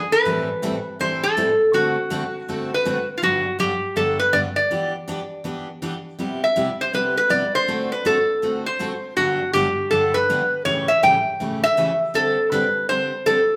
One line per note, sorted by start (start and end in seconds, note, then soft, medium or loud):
0.00 0.14 G#4 medium
0.12 1.00 B4 loud
0.25 0.47 A2 medium
0.25 0.48 E3 medium
0.25 0.48 G3 medium
0.25 0.48 C4 medium
0.25 0.48 E4 medium
0.25 0.48 A4 medium
0.62 0.74 A2 medium
0.62 0.75 E3 medium
0.62 0.75 G3 medium
0.62 0.75 C4 medium
0.62 0.75 E4 medium
0.62 0.75 A4 loud
0.99 1.22 A2 medium
0.99 1.22 E3 medium
0.99 1.22 G3 medium
0.99 1.22 C4 medium
0.99 1.22 E4 medium
0.99 1.22 A4 medium
0.99 1.25 C5 loud
1.23 1.71 A4 loud
1.37 1.49 A2 medium
1.37 1.49 E3 medium
1.37 1.49 G3 medium
1.37 1.49 C4 medium
1.37 1.49 E4 medium
1.37 1.49 A4 medium
1.73 1.96 D3 medium
1.73 1.96 A3 medium
1.73 1.96 C4 medium
1.73 3.05 F#4 medium
1.73 1.96 F#4 medium
1.73 1.96 A4 medium
2.10 2.22 D3 medium
2.10 2.23 A3 medium
2.10 2.23 C4 medium
2.10 2.23 F#4 medium
2.10 2.23 A4 medium
2.48 2.70 D3 medium
2.48 2.70 A3 medium
2.48 2.71 C4 medium
2.48 2.71 F#4 medium
2.48 2.71 A4 medium
2.74 3.08 B4 medium
2.85 2.97 D3 medium
2.85 2.97 A3 medium
2.85 2.97 C4 medium
2.85 2.97 F#4 medium
2.85 2.98 A4 medium
3.18 3.23 F4 medium
3.22 3.44 G2 medium
3.22 3.44 D3 medium
3.22 3.44 F#3 medium
3.22 3.44 B3 medium
3.22 3.44 D4 medium
3.22 3.59 F#4 medium
3.22 3.45 G4 medium
3.59 3.71 G2 medium
3.59 3.71 D3 medium
3.59 3.71 F#3 medium
3.59 3.71 B3 medium
3.59 3.71 D4 medium
3.59 3.98 G4 medium
3.59 3.71 G4 medium
3.96 4.18 G2 medium
3.96 4.18 D3 medium
3.96 4.18 F#3 medium
3.96 4.18 B3 medium
3.96 4.18 D4 medium
3.96 4.19 G4 medium
3.96 4.19 A4 medium
4.20 4.34 B4 medium
4.33 4.45 G2 medium
4.33 4.45 D3 medium
4.33 4.45 F#3 medium
4.33 4.45 B3 medium
4.33 4.45 D4 medium
4.33 4.45 G4 medium
4.33 4.39 D5 loud
4.56 4.91 D5 medium
4.71 4.92 E3 medium
4.71 4.93 B3 medium
4.71 4.93 D4 medium
4.71 4.93 G4 medium
5.08 5.19 E3 medium
5.08 5.19 B3 medium
5.08 5.20 D4 medium
5.08 5.20 G4 medium
5.44 5.66 E3 medium
5.44 5.67 B3 medium
5.44 5.67 D4 medium
5.44 5.67 G4 medium
5.82 5.94 E3 medium
5.82 5.94 B3 medium
5.82 5.94 D4 medium
5.82 5.94 G4 medium
6.19 6.41 C3 medium
6.19 6.41 G3 medium
6.19 6.41 B3 medium
6.19 6.41 E4 medium
6.19 6.41 G4 medium
6.44 6.82 E5 medium
6.56 6.68 C3 medium
6.56 6.68 G3 medium
6.56 6.68 B3 medium
6.56 6.68 E4 medium
6.56 6.68 G4 medium
6.81 6.94 C5 medium
6.93 7.15 C3 medium
6.93 7.15 G3 medium
6.93 7.16 B3 medium
6.93 7.16 E4 medium
6.93 7.16 G4 medium
6.93 7.16 B4 medium
7.17 7.31 B4 medium
7.29 7.42 C3 medium
7.29 7.42 G3 medium
7.29 7.42 B3 medium
7.29 7.42 E4 medium
7.29 7.43 G4 medium
7.29 7.55 D5 medium
7.55 7.92 C5 medium
7.68 7.90 D3 medium
7.68 7.90 A3 medium
7.68 7.90 C4 medium
7.68 7.90 F#4 medium
7.68 7.90 A4 medium
7.92 8.06 B4 medium
8.05 8.17 D3 medium
8.05 8.17 A3 medium
8.05 8.17 C4 medium
8.05 8.17 F#4 medium
8.05 8.17 A4 medium
8.05 8.43 A4 medium
8.42 8.64 D3 medium
8.42 8.64 A3 medium
8.42 8.65 C4 medium
8.42 8.65 F#4 medium
8.42 8.65 A4 medium
8.66 9.14 C5 medium
8.79 8.91 D3 medium
8.79 8.91 A3 medium
8.79 8.92 C4 medium
8.79 8.92 F#4 medium
8.79 8.92 A4 medium
9.17 9.39 G2 medium
9.17 9.39 D3 medium
9.17 9.39 F#3 medium
9.17 9.39 B3 medium
9.17 9.39 D4 medium
9.17 9.53 F#4 medium
9.17 9.40 G4 medium
9.53 9.66 G2 medium
9.53 9.66 D3 medium
9.53 9.66 F#3 medium
9.53 9.66 B3 medium
9.53 9.66 D4 medium
9.53 9.92 G4 medium
9.53 9.67 G4 medium
9.91 10.13 G2 medium
9.91 10.13 D3 medium
9.91 10.13 F#3 medium
9.91 10.14 B3 medium
9.91 10.14 D4 medium
9.91 10.14 G4 medium
9.91 10.16 A4 medium
10.14 10.65 B4 medium
10.30 10.41 G2 medium
10.30 10.41 D3 medium
10.30 10.41 F#3 medium
10.30 10.41 B3 medium
10.30 10.41 D4 medium
10.30 10.41 G4 medium
10.65 10.87 A2 medium
10.65 10.87 C#3 medium
10.65 10.87 E3 medium
10.65 10.88 A3 medium
10.65 10.88 C#4 medium
10.65 10.88 G4 medium
10.65 10.90 C#5 loud
10.88 11.03 E5 loud
11.03 11.14 A2 medium
11.03 11.15 C#3 medium
11.03 11.15 E3 medium
11.03 11.15 A3 medium
11.03 11.15 C#4 medium
11.03 11.15 G4 medium
11.03 11.63 G5 medium
11.40 11.62 A2 medium
11.40 11.62 C#3 medium
11.40 11.62 E3 medium
11.40 11.62 A3 medium
11.40 11.63 C#4 medium
11.40 11.63 G4 medium
11.64 11.98 E5 loud
11.77 11.89 A2 medium
11.77 11.89 C#3 medium
11.77 11.89 E3 medium
11.77 11.89 A3 medium
11.77 11.89 C#4 medium
11.77 11.90 G4 medium
12.14 12.36 D3 medium
12.14 12.36 G3 medium
12.14 12.36 C4 medium
12.14 12.37 D4 medium
12.14 12.37 G4 medium
12.14 12.53 A4 loud
12.52 12.63 D3 medium
12.52 12.64 G3 medium
12.52 12.64 C4 medium
12.52 12.64 D4 medium
12.52 12.64 G4 medium
12.52 12.89 B4 medium
12.89 13.11 D3 medium
12.89 13.11 G3 medium
12.89 13.11 C4 medium
12.89 13.12 D4 medium
12.89 13.12 G4 medium
12.89 13.28 C5 medium
13.26 13.38 D3 medium
13.26 13.38 G3 medium
13.26 13.38 C4 medium
13.26 13.38 D4 medium
13.26 13.39 G4 medium
13.26 13.56 A4 loud